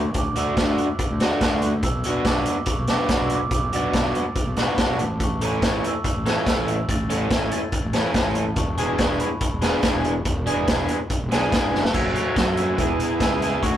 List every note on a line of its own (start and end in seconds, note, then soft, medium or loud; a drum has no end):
0.00 0.14 D2 medium
0.00 0.17 C#6 medium
0.14 0.54 D2 medium
0.14 kick medium
0.14 closed hi-hat medium
0.18 0.39 D6 medium
0.36 0.56 A3 medium
0.36 0.57 D4 medium
0.36 0.57 F#4 medium
0.36 0.59 E6 medium
0.36 closed hi-hat medium
0.57 0.77 D2 medium
0.57 0.85 A3 medium
0.57 0.85 D4 medium
0.57 0.86 F#4 medium
0.57 0.78 F#6 medium
0.57 kick loud
0.57 snare loud
0.57 closed hi-hat medium
0.78 1.59 F#6 medium
0.78 closed hi-hat medium
0.99 kick medium
0.99 closed hi-hat medium
1.10 1.30 D2 medium
1.20 1.41 A3 medium
1.20 1.41 D4 medium
1.20 1.42 F#4 medium
1.20 snare medium
1.20 closed hi-hat medium
1.41 1.69 A3 medium
1.41 1.69 D4 medium
1.41 1.70 F#4 medium
1.41 kick loud
1.41 snare loud
1.41 closed hi-hat medium
1.53 1.82 D2 medium
1.62 closed hi-hat medium
1.83 2.23 B1 medium
1.83 2.27 E6 medium
1.83 kick loud
1.83 closed hi-hat medium
2.04 2.26 B3 medium
2.04 2.26 D4 medium
2.04 2.26 F#4 medium
2.04 closed hi-hat medium
2.25 2.45 B1 medium
2.25 2.54 B3 medium
2.25 2.54 D4 medium
2.25 2.54 F#4 medium
2.25 2.69 D6 medium
2.25 kick loud
2.25 snare loud
2.25 closed hi-hat medium
2.46 closed hi-hat medium
2.66 kick medium
2.66 closed hi-hat medium
2.70 2.91 C#6 medium
2.78 2.98 B1 medium
2.87 3.08 B3 medium
2.87 3.09 D4 medium
2.87 3.09 F#4 medium
2.87 3.24 D6 medium
2.87 snare medium
2.87 closed hi-hat medium
3.09 3.37 B3 medium
3.09 3.38 D4 medium
3.09 3.38 F#4 medium
3.09 kick loud
3.09 snare loud
3.09 closed hi-hat medium
3.20 3.50 B1 medium
3.26 3.31 E6 medium
3.26 closed hi-hat medium
3.35 3.54 D6 medium
3.51 3.91 B1 medium
3.51 3.75 D6 medium
3.51 kick loud
3.51 closed hi-hat medium
3.73 3.94 B3 medium
3.73 3.94 D4 medium
3.73 3.94 F#4 medium
3.73 4.76 A6 medium
3.73 closed hi-hat medium
3.94 4.14 B1 medium
3.94 4.22 B3 medium
3.94 4.22 D4 medium
3.94 4.23 F#4 medium
3.94 kick loud
3.94 snare loud
3.94 closed hi-hat medium
4.15 closed hi-hat medium
4.35 kick medium
4.35 closed hi-hat medium
4.46 4.66 B1 medium
4.57 4.77 B3 medium
4.57 4.78 D4 medium
4.57 4.78 F#4 medium
4.57 snare medium
4.57 closed hi-hat medium
4.78 5.00 B3 medium
4.78 5.00 D4 medium
4.78 5.00 F#4 medium
4.78 5.23 A5 medium
4.78 kick medium
4.78 snare loud
4.78 closed hi-hat medium
4.89 4.99 B1 medium
4.99 5.59 A1 medium
4.99 closed hi-hat medium
5.20 5.64 C#6 medium
5.20 kick loud
5.20 closed hi-hat medium
5.41 5.62 E3 medium
5.41 5.63 A3 medium
5.41 5.63 C#4 medium
5.41 5.63 A4 medium
5.41 closed hi-hat medium
5.62 5.82 A1 medium
5.62 5.91 E3 medium
5.62 5.91 A3 medium
5.62 5.91 C#4 medium
5.62 5.91 A4 medium
5.62 5.83 C#6 medium
5.62 kick medium
5.62 snare medium
5.62 closed hi-hat medium
5.84 6.47 E6 medium
5.84 closed hi-hat medium
6.04 kick loud
6.04 closed hi-hat medium
6.17 6.36 A1 medium
6.26 6.46 E3 medium
6.26 6.46 A3 medium
6.26 6.46 C#4 medium
6.26 6.47 A4 medium
6.26 snare medium
6.26 closed hi-hat medium
6.47 6.74 E3 medium
6.47 6.75 A3 medium
6.47 6.75 C#4 medium
6.47 6.75 A4 medium
6.47 6.91 E6 medium
6.47 kick loud
6.47 snare loud
6.47 closed hi-hat medium
6.58 6.87 A1 medium
6.68 closed hi-hat medium
6.89 7.28 A1 medium
6.89 7.33 A6 medium
6.89 kick loud
6.89 closed hi-hat medium
7.10 7.30 E3 medium
7.10 7.30 A3 medium
7.10 7.30 C#4 medium
7.10 7.31 A4 medium
7.10 closed hi-hat medium
7.30 7.50 A1 medium
7.30 7.59 E3 medium
7.30 7.59 A3 medium
7.30 7.59 C#4 medium
7.30 7.59 A4 medium
7.30 7.52 G#6 medium
7.30 kick loud
7.30 snare loud
7.30 closed hi-hat medium
7.51 8.17 A6 medium
7.51 closed hi-hat medium
7.72 kick loud
7.72 closed hi-hat medium
7.85 8.04 A1 medium
7.93 8.13 E3 medium
7.93 8.13 A3 medium
7.93 8.14 C#4 medium
7.93 8.14 A4 medium
7.93 snare medium
7.93 closed hi-hat medium
8.14 8.42 E3 medium
8.14 8.42 A3 medium
8.14 8.43 C#4 medium
8.14 8.43 A4 medium
8.14 8.59 A5 medium
8.14 kick loud
8.14 snare loud
8.14 closed hi-hat medium
8.25 8.55 A1 medium
8.35 closed hi-hat medium
8.56 8.96 E1 medium
8.56 8.99 C#6 medium
8.56 kick loud
8.56 closed hi-hat medium
8.78 8.97 E3 medium
8.78 8.97 B3 medium
8.78 8.98 D4 medium
8.78 8.98 G#4 medium
8.78 closed hi-hat medium
8.98 9.19 E1 medium
8.98 9.26 E3 medium
8.98 9.26 B3 medium
8.98 9.27 D4 medium
8.98 9.27 G#4 medium
8.98 9.21 C#6 medium
8.98 kick loud
8.98 snare loud
8.98 closed hi-hat medium
9.20 11.48 B5 medium
9.20 closed hi-hat medium
9.41 kick loud
9.41 closed hi-hat medium
9.52 9.72 E1 medium
9.62 9.82 E3 medium
9.62 9.82 B3 medium
9.62 9.82 D4 medium
9.62 9.82 G#4 medium
9.62 snare medium
9.62 closed hi-hat medium
9.83 10.11 E3 medium
9.83 10.11 B3 medium
9.83 10.11 D4 medium
9.83 10.11 G#4 medium
9.83 kick loud
9.83 snare loud
9.83 closed hi-hat medium
9.94 10.24 E1 medium
10.04 closed hi-hat medium
10.25 10.65 E1 medium
10.25 kick loud
10.25 closed hi-hat medium
10.47 10.67 E3 medium
10.47 10.68 B3 medium
10.47 10.68 D4 medium
10.47 10.68 G#4 medium
10.47 closed hi-hat medium
10.68 10.88 E1 medium
10.68 10.96 E3 medium
10.68 10.96 B3 medium
10.68 10.96 D4 medium
10.68 10.96 G#4 medium
10.68 kick loud
10.68 snare loud
10.68 closed hi-hat medium
10.88 closed hi-hat medium
11.10 kick medium
11.10 closed hi-hat medium
11.22 11.31 E1 medium
11.32 11.51 B1 medium
11.32 11.51 E3 medium
11.32 11.52 B3 medium
11.32 11.52 D4 medium
11.32 11.53 G#4 medium
11.32 snare medium
11.32 closed hi-hat medium
11.52 11.71 G#1 medium
11.52 11.80 E3 medium
11.52 11.80 B3 medium
11.52 11.80 D4 medium
11.52 11.81 G#4 medium
11.52 kick loud
11.52 snare loud
11.52 closed hi-hat medium
11.74 11.93 F#1 medium
11.74 snare medium
11.85 snare medium
11.94 12.14 F#1 medium
11.94 12.34 F#3 medium
11.94 12.35 A3 medium
11.94 12.36 C#4 medium
11.94 12.37 F#4 medium
11.94 12.14 E6 medium
11.94 kick medium
11.94 crash medium
12.15 12.59 F#6 medium
12.15 closed hi-hat medium
12.36 12.76 F#2 medium
12.36 12.77 F#3 medium
12.36 12.59 A3 medium
12.36 12.58 C#4 medium
12.36 12.56 F#4 medium
12.36 kick medium
12.36 snare medium
12.36 closed hi-hat medium
12.57 12.79 A3 soft
12.57 12.78 C#4 medium
12.57 12.77 F#4 medium
12.57 13.17 E6 medium
12.57 closed hi-hat medium
12.78 12.98 E1 medium
12.78 13.19 E3 medium
12.78 13.20 B3 medium
12.78 13.20 E4 medium
12.78 13.21 G#4 medium
12.78 kick medium
12.78 closed hi-hat medium
13.00 closed hi-hat medium
13.20 13.60 C#2 medium
13.20 13.61 E3 medium
13.20 13.42 B3 medium
13.20 13.42 E4 medium
13.20 13.40 G#4 medium
13.20 13.61 E6 medium
13.20 kick loud
13.20 snare loud
13.20 closed hi-hat medium
13.41 13.63 B3 medium
13.41 13.62 E4 medium
13.41 13.61 G#4 medium
13.41 snare soft
13.41 closed hi-hat medium
13.62 13.77 D2 medium
13.62 13.77 F#3 medium
13.62 13.77 A3 medium
13.62 13.77 D4 medium
13.62 13.77 F#4 loud
13.62 13.72 C#6 medium
13.62 kick medium
13.62 closed hi-hat medium